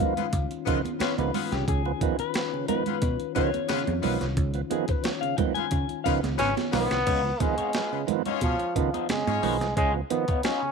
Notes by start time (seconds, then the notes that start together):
Already playing: D#3 C#4 F4 F5
0.00 D#3 F3 B3, kick, closed hi-hat, high conga, low conga
0.16 B3 F4 G#4 B4, closed hi-hat, low conga
0.33 C#2, kick, closed hi-hat, muted conga
0.51 closed hi-hat, muted conga
0.66 C#3 D#3 F3 B3 F4 G#4 B4, kick, closed hi-hat
0.85 closed hi-hat, high conga
1.00 B3 F4 G#4 B4 C#5, muted picked electric bass stroke, snare, closed hi-hat, muted conga, high conga
1.18 C#2 D#3 F3 B3 B4, closed hi-hat, high conga
1.33 B3 F4 G#4 B4, open hi-hat, low conga
1.52 C2 C#3 G4, snare, closed hi-hat
1.67 C#2 C#3 G#4, kick, closed hi-hat, muted conga
1.85 F3 B3, muted conga
2.01 D#3 F3 B3, kick, closed hi-hat, high conga
2.19 B4, muted picked electric bass stroke, closed hi-hat
2.34 F3 B3, snare, closed hi-hat, muted conga
2.53 C#3, muted conga
2.68 D#3 F3 B3 B4, closed hi-hat, high conga, low conga
2.86 B3 F4 G#4 B4, closed hi-hat, low conga
3.02 B2, kick, closed hi-hat
3.20 closed hi-hat, muted conga
3.35 C#3 D#3 F3 B3 F4 G#4 B4 C#5, kick, closed hi-hat
3.54 closed hi-hat, high conga
3.69 C#3 B3 F4 G#4 B4, snare, closed hi-hat, high conga
3.87 F2, closed hi-hat, muted conga, high conga
4.02 B1 D#3 F3 B3 F4 G#4 B4, open hi-hat, low conga
4.21 C2 F3 B3, snare, closed hi-hat
4.37 C#2 C#3, kick, closed hi-hat, muted conga
4.54 F3 B3, closed hi-hat, muted conga
4.70 D#3 F3 B3 G#4, closed hi-hat, high conga
4.88 B4, muted picked electric bass stroke, kick, closed hi-hat
5.04 F3 B3 C#5, snare, closed hi-hat
5.21 C#3 F5, closed hi-hat, muted conga
5.37 D#3 F3 B3 G5, kick, closed hi-hat, high conga, low conga
5.54 B3 F4 G#4 B4 G#5, closed hi-hat, low conga
5.71 C#3, kick, closed hi-hat
5.89 closed hi-hat
6.04 C#3 D#3 F3 B3 F4 G#4 B4 F5, kick, closed hi-hat
6.23 C#2, snare, closed hi-hat, high conga
6.38 G#1 C#3 B3 C#4 F4 G#4 B4 C#5, snare, closed hi-hat, muted conga, high conga
6.57 snare, closed hi-hat, muted conga, high conga
6.72 B1 D#3 F3 B3 F4 G#4 B4, snare, open hi-hat, low conga
6.91 C2 F3 B3, snare, closed hi-hat
7.06 C#2 C#3 B3 D#4 F4 C#5, kick, closed hi-hat, crash
7.24 F3 B3, muted clean electric guitar stroke, muted conga
7.40 D#3 F3 G#3 B3 F4 G#4 B4, muted clean electric guitar stroke, kick, closed hi-hat, high conga
7.57 B3 C#4 D#4 F4 G#4 C#5, muted picked electric bass stroke, closed hi-hat, high conga
7.73 F3 B3 F4 G#4 B4, snare, closed hi-hat, muted conga
7.92 C#3 B3 F4 G#4 B4, muted clean electric guitar stroke, muted conga
8.07 D#3 F3 B3, closed hi-hat, high conga, low conga
8.26 B3 C#4 D#4 F4 G#4 C#5, closed hi-hat, low conga
8.41 B2 F3, muted clean electric guitar stroke, kick, closed hi-hat, muted conga
8.59 muted clean electric guitar stroke, closed hi-hat, muted conga
8.75 C#3 D#3 F3 B3, kick, closed hi-hat
8.94 B3 D#4 F4 D#5, closed hi-hat, high conga
9.09 C#3 G#3, muted clean electric guitar stroke, snare, closed hi-hat, high conga
9.27 G#2 C#4 F4 G#4 C#5, closed hi-hat, muted conga, high conga
9.42 B1 D#3 F3 B3 D#4 F4 C#5, open hi-hat, low conga
9.61 C2 F3 B3, snare, closed hi-hat
9.76 C#2 C#3 G#3 B3 D#4 F4 C#5, kick, closed hi-hat
9.94 F3 B3
10.10 D#3 F3 B3, muted clean electric guitar stroke, closed hi-hat, high conga
10.28 B3 D#4 F4 C#5, muted picked electric bass stroke, kick, closed hi-hat, high conga
10.43 F3 B3 C#4 D#4 F4 C#5, snare, closed hi-hat, muted conga
10.62 C#3, muted conga